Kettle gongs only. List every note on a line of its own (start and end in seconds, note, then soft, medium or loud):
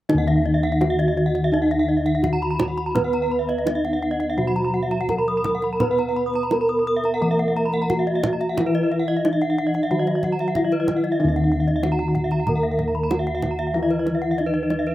0.10 2.20 D#4 medium
0.14 4.36 D#2 medium
2.24 2.32 E4 soft
2.95 5.05 B4 soft
3.66 3.74 E4 soft
4.38 6.48 B2 medium
5.09 5.17 E4 soft
5.81 7.86 B4 medium
6.52 6.60 E4 soft
7.22 9.21 E3 medium
7.91 7.99 E4 soft
8.57 9.24 E4 medium
9.25 9.33 E4 soft
9.91 11.80 D#3 soft
10.55 10.63 E4 soft
11.20 13.07 D#4 medium
11.24 14.95 D#2 medium
11.84 11.92 E4 soft
13.11 13.19 E4 soft
13.76 14.38 E4 medium
14.39 14.47 E4 soft